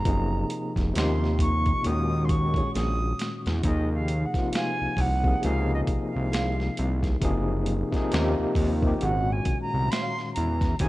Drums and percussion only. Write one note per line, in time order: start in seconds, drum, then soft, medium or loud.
0.05 kick loud
0.05 closed hi-hat medium
0.50 closed hi-hat medium
0.76 kick medium
0.76 snare soft
0.76 closed hi-hat soft
0.95 snare loud
0.95 closed hi-hat medium
1.24 snare soft
1.39 kick medium
1.39 closed hi-hat medium
1.66 kick medium
1.66 closed hi-hat soft
1.84 closed hi-hat medium
2.29 kick medium
2.29 closed hi-hat medium
2.54 kick medium
2.54 closed hi-hat soft
2.75 snare medium
2.75 closed hi-hat medium
3.19 snare medium
3.19 closed hi-hat medium
3.46 snare medium
3.46 closed hi-hat soft
3.63 kick loud
3.63 closed hi-hat medium
4.08 closed hi-hat medium
4.34 kick medium
4.34 snare soft
4.34 closed hi-hat soft
4.53 snare loud
4.53 closed hi-hat medium
4.97 kick medium
4.97 open hi-hat soft
5.24 kick medium
5.43 closed hi-hat medium
5.87 kick medium
5.87 closed hi-hat medium
6.33 snare loud
6.33 closed hi-hat medium
6.60 snare soft
6.77 closed hi-hat medium
7.03 kick medium
7.03 snare soft
7.03 closed hi-hat soft
7.22 kick loud
7.22 closed hi-hat medium
7.66 closed hi-hat medium
7.93 kick medium
7.93 snare soft
7.93 closed hi-hat soft
8.12 snare loud
8.12 closed hi-hat medium
8.55 kick medium
8.55 open hi-hat soft
8.82 kick medium
9.01 closed hi-hat medium
9.45 kick medium
9.45 closed hi-hat medium
9.92 snare loud
9.92 closed hi-hat medium
10.19 snare soft
10.36 closed hi-hat medium
10.61 kick medium
10.61 snare soft
10.61 closed hi-hat soft
10.79 kick loud
10.79 closed hi-hat medium